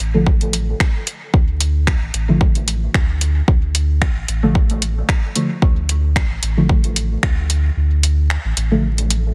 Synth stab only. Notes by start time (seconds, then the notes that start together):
0.14 D3 F3 A3
2.28 D3 F3 A3
4.43 D3 F3 A3
5.36 D3 F3 A3
6.57 D3 F3 A3
8.71 D3 F3 A3